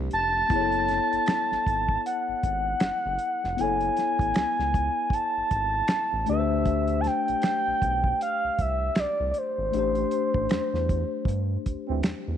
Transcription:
Already playing: tine electric piano A3 D4 G4 C5, hollow-body jazz guitar G4
0.11 analog synth bass F1, analog synth lead A5, closed hi-hat
0.49 analog synth bass F#1, tine electric piano B3 E4, kick, closed hi-hat
0.53 tine electric piano G#4 C#5
0.60 tine electric piano A4
0.72 closed hi-hat
0.88 snare, closed hi-hat
1.13 analog synth bass G#1, closed hi-hat
1.26 finger snap, snare, closed hi-hat
1.51 analog synth bass G#1, snare
1.67 analog synth bass G#1, kick, closed hi-hat
1.89 kick
2.06 analog synth lead F#5, closed hi-hat
2.28 analog synth bass G#1
2.43 analog synth bass G#1, kick, closed hi-hat
2.80 analog synth bass F#1, finger snap, snare, closed hi-hat
3.06 analog synth bass F#1
3.19 closed hi-hat
3.44 analog synth bass F1, snare
3.57 analog synth bass F#1, tine electric piano B3 E4, analog synth lead G#5, closed hi-hat
3.61 tine electric piano A4 C#5
3.81 closed hi-hat
3.97 snare, closed hi-hat
4.19 analog synth bass A1, kick, closed hi-hat
4.34 analog synth bass C#2, finger snap, snare, closed hi-hat
4.59 analog synth bass C#2, snare
4.74 kick, closed hi-hat
5.10 analog synth lead A5, kick, closed hi-hat
5.37 analog synth bass G#1
5.51 analog synth bass G#1, kick, closed hi-hat
5.88 finger snap, snare, closed hi-hat
6.13 analog synth bass A1
6.26 analog synth bass D2, tine electric piano A3 D4, analog synth lead E5, closed hi-hat
6.30 tine electric piano G4 B4
6.39 tine electric piano C5
6.65 kick, closed hi-hat
6.88 closed hi-hat
7.01 analog synth lead A5, closed hi-hat
7.06 analog synth lead G5, snare
7.28 analog synth bass B1, closed hi-hat
7.42 finger snap, snare, closed hi-hat
7.67 analog synth bass B1
7.82 analog synth bass B1, kick, closed hi-hat
8.04 kick
8.21 analog synth lead F5, closed hi-hat
8.44 analog synth bass C2
8.59 analog synth bass C2, analog synth lead E5, kick, closed hi-hat
8.95 analog synth bass C2, finger snap, snare, closed hi-hat
9.00 analog synth lead D5
9.20 analog synth bass C2
9.31 analog synth lead D5, closed hi-hat
9.38 analog synth lead C5
9.58 analog synth bass G#1
9.72 analog synth bass A1, tine electric piano A3 D4, closed hi-hat
9.77 tine electric piano G4 C5
9.95 closed hi-hat
10.11 closed hi-hat
10.34 analog synth bass A1, kick
10.49 analog synth bass E2, finger snap, snare, closed hi-hat
10.74 analog synth bass E2, snare
10.89 kick, closed hi-hat
11.25 analog synth bass G2, kick, closed hi-hat
11.66 analog synth bass D2, kick, closed hi-hat
11.88 analog synth bass D2, trombone section G2 E3 C4
12.03 analog synth bass E2, finger snap, snare, closed hi-hat
12.28 analog synth bass E2

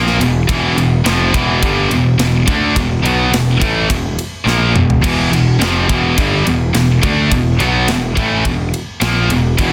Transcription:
Already playing: picked electric bass A#1, distorted electric guitar A#2 F3 A#3
0.07 snare
0.19 picked electric bass E1, distorted electric guitar E2 B2, ride
0.49 picked electric bass E1, distorted electric guitar E2 B2 E3, kick, ride
0.75 picked electric bass E1, distorted electric guitar E2 B2, ride
1.04 picked electric bass F1, distorted electric guitar F2 C3 F3, snare, ride
1.34 picked electric bass E1, distorted electric guitar E2 B2 E3, kick, ride
1.63 picked electric bass G1, distorted electric guitar G2 D3 G3, kick, ride
1.90 picked electric bass E1, distorted electric guitar E2 B2, ride
2.19 picked electric bass E1, distorted electric guitar E2 B2, snare, ride
2.48 picked electric bass D2, distorted electric guitar D3 A3 D4, kick, ride
2.75 picked electric bass E1, distorted electric guitar E2 B2, kick, ride
3.04 picked electric bass B1, distorted electric guitar B2 F#3 B3, ride
3.31 picked electric bass E1, distorted electric guitar E2 B2, snare, ride
3.60 picked electric bass A1, distorted electric guitar A2 E3 A3, kick, ride
3.88 picked electric bass E1, distorted electric guitar E2 B2, kick, ride
4.19 ride
4.46 picked electric bass A#1, distorted electric guitar A#2 F3 A#3, snare
4.75 picked electric bass E1, distorted electric guitar E2 B2, mid tom
4.90 floor tom
5.01 picked electric bass E1, distorted electric guitar E2 B2 E3, kick, ride, crash
5.31 picked electric bass E1, distorted electric guitar E2 B2, ride
5.59 picked electric bass F1, distorted electric guitar F2 C3 F3, snare, ride
5.88 picked electric bass E1, distorted electric guitar E2 B2 E3, kick, ride
6.18 picked electric bass G1, distorted electric guitar G2 D3 G3, kick, ride
6.46 picked electric bass E1, distorted electric guitar E2 B2, ride
6.74 picked electric bass E1, distorted electric guitar E2 B2, snare, ride
7.03 picked electric bass D2, distorted electric guitar D3 A3 D4, kick, ride
7.31 picked electric bass E1, distorted electric guitar E2 B2, kick, ride
7.59 picked electric bass B1, distorted electric guitar B2 F#3 B3, ride
7.88 picked electric bass E1, distorted electric guitar E2 B2, snare, ride
8.17 picked electric bass A1, distorted electric guitar A2 E3 A3, kick, ride
8.45 picked electric bass E1, distorted electric guitar E2 B2, kick, ride
8.74 ride
9.01 picked electric bass A#1, distorted electric guitar A#2 F3 A#3, snare, ride
9.29 picked electric bass E1, distorted electric guitar E2 B2, ride
9.58 picked electric bass E1, distorted electric guitar E2 B2 E3, kick, ride

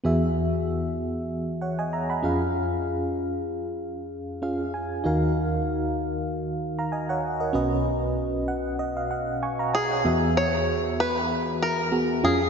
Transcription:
0.04 fm electric piano E2 E3 B3 F#4 G#4 E5
1.62 fm electric piano C#5 F#5
1.79 fm electric piano D#5 G#5
1.93 fm electric piano E5 A#5
2.10 fm electric piano F#5 B5
2.23 fm electric piano F2 C#4 F4 G#4 F5
4.42 fm electric piano C#4 F4 G#4 F5
4.74 fm electric piano G#5
5.04 fm electric piano D#2 D#3 D#4 F#4 A#4 F5
6.79 fm electric piano F5 A#5
6.92 fm electric piano D#5 G#5
7.09 fm electric piano C#5 F#5
7.40 fm electric piano A#4 D#5
7.53 fm electric piano B1 B2 C#4 F#4 B4 D#5
8.48 fm electric piano F#5
8.79 fm electric piano D#5
8.97 fm electric piano F5
9.11 fm electric piano F#5
9.43 fm electric piano G#5 C#6
9.59 fm electric piano F5 A#5
9.73 five-string banjo G#4, fm electric piano D#5 G#5
9.91 fm electric piano C#5 F#5
10.05 fm electric piano E2 E3 B3 F#4 G#4 E5
10.37 five-string banjo C#5
11.00 five-string banjo B4
11.62 five-string banjo A#4
11.92 fm electric piano B3 F#4 G#4
12.23 fm electric piano F2 C#4 F4 G#4 F5, five-string banjo G#4

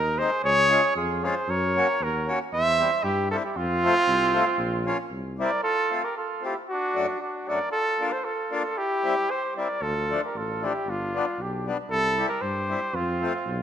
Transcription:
Already playing: tuba D#2, cor anglais D#4, trumpet A#4
0.18 accordion G#3 C4 D#4, cor anglais G#4, trumpet C5
0.43 tuba C#2, cor anglais G#4, trumpet C#5
0.69 accordion G#3 C#4 F4
0.95 tuba F2, cor anglais F4, trumpet G#4
1.23 accordion G#3 C#4 F4, cor anglais G#4, trumpet C5
1.48 tuba F#2, cor anglais A#4, trumpet C#5
1.76 accordion A#3 C#4 F#4
2.00 tuba D#2, cor anglais F#4, trumpet A#4
2.27 accordion A#3 C#4 F#4
2.52 tuba E2, cor anglais C5, trumpet E5
2.78 accordion G3 C4 E4
3.04 tuba G2, cor anglais E4, trumpet G4
3.31 accordion G3 C4 E4, cor anglais F4, trumpet A4
3.44 cor anglais E4, trumpet G4
3.56 tuba F2, cor anglais C4, trumpet F4
3.83 accordion A3 C4 F4
4.07 tuba C2
4.33 accordion A3 C4 F4
4.57 tuba A#1
4.85 accordion A#3 C#4 F4
5.11 tuba C2
5.39 accordion G3 C4 E4, cor anglais A#4, trumpet D5
5.63 cor anglais F4, trumpet A4
5.90 accordion A3 C4 F4
6.04 cor anglais G4, trumpet A#4
6.17 cor anglais F4, trumpet A4
6.41 accordion A3 C4 F4, trumpet G4
6.46 cor anglais E4
6.69 cor anglais D4, trumpet F#4
6.94 accordion F#2 A3 D4 F#4
7.20 cor anglais D4, trumpet F#4
7.48 accordion F#2 A3 D4 F#4, cor anglais A#4, trumpet D5
7.71 cor anglais F4, trumpet A4
7.99 accordion A#3 D4 F4
8.11 cor anglais A4, trumpet C5
8.24 cor anglais F4, trumpet A4
8.51 accordion A#3 D4 F4
8.77 cor anglais E4, trumpet G4
9.03 accordion G3 C4 E4
9.30 cor anglais G4, trumpet C5
9.56 accordion G3 C4 E4, cor anglais A#4, trumpet D5
9.81 tuba D2, cor anglais F4, trumpet A4
10.10 accordion F3 A3 D4
10.24 cor anglais G4, trumpet A#4
10.34 tuba A1, cor anglais F4, trumpet A4
10.61 accordion F3 A3 D4, cor anglais E4, trumpet G4
10.86 tuba G1, cor anglais D4, trumpet F4
11.14 accordion G3 B3 D4
11.38 tuba B1, cor anglais D4, trumpet G4
11.65 accordion G3 B3 D4
11.89 tuba C2, cor anglais E4, trumpet A4
12.17 accordion G3 C4 E4
12.29 cor anglais G4, trumpet A#4
12.41 tuba G2, cor anglais G4, trumpet C5
12.68 accordion G3 C4 E4
12.93 tuba F2, cor anglais C4, trumpet F4
13.21 accordion A3 C4 F4
13.46 tuba B1

